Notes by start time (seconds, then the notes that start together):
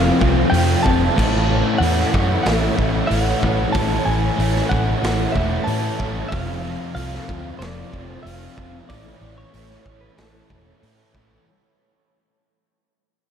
Already playing: F2 C3 F3 A3 C4 F4 F5
0.20 C2 F2 C3 F3 A3 C4 F4, kick
0.50 F2 C3 F3 G5
0.54 F3 A3 C4 F4, open hi-hat
0.83 F1 F2 C3 F3 C4 F4 A5, kick
0.88 F3 A3
1.16 A1 A2 E3 A3 C#4 E4, kick, crash
1.49 A2 E3 A3
1.78 E2 A2 E3 A3 F#5, open hi-hat
1.83 C#4 E4
2.00 snare
2.13 F#2 A2 E3 A3, kick
2.43 A1 A2 E3 A3 E5, snare, open hi-hat
2.76 A1 A2 E3 A3 E4, kick
2.81 A3 C#4
3.07 A1 A2 E3 A3 F#5, open hi-hat
3.12 C#4 E4
3.41 A1 A2 E3 A3 C#4 E4, kick
3.72 A1 A2 E3 A3 C#4 A5, kick, open hi-hat
3.77 E4
4.05 A1 A2 E3 A3 G#5
4.37 A1 A2 E3 A3 C#4 E4, open hi-hat
4.56 snare
4.69 A1 A2 E3 A3 F#5, kick
5.02 A1 A2 E3 A3, snare, open hi-hat
5.32 E1 A2 E3 A3 C#4 E4 E5, kick
5.37 A3
5.64 A2 E3 A3 C#4 A5, open hi-hat
5.68 A2 E3 A3 E4
5.98 A1 A2 E3 A3 C#4 E4, kick
6.28 F1 F2 C3 F3 A3 F5, kick
6.33 C4 F4, open hi-hat
6.63 F2 C3 F3
6.95 C2 F2 C3 F3 A3 C4 F4 F5, open hi-hat
7.14 snare
7.28 D2 F2 C3 F3, kick
7.59 F1 F2 C3 F3 D5, snare, open hi-hat
7.92 F1 F2 C3 F3 A3 C4 F4, kick
8.10 C5
8.23 F1 F2 C3 F3 A3 C4 F4 F5, open hi-hat
8.56 F1 F2 C3 F3 A3 C4 F4, kick
8.89 A1 A2 E3 A3 C#4 E4 D5, kick, open hi-hat
9.21 A1 A2 E3 A3
9.38 C#5
9.53 A1 A2 E3 A3 C#4 E4, open hi-hat
9.71 snare
9.86 A1 A2 E3 A3, kick
10.01 B4
10.17 A1 A2 E3 A3 A4, snare, open hi-hat
10.48 E1 A2 E3 A3 E4, kick
10.52 A3 C#4
10.81 A2 E3 A3 C#4, open hi-hat
10.85 E4
11.14 A1 A2 E3 A3 C#4 E4, kick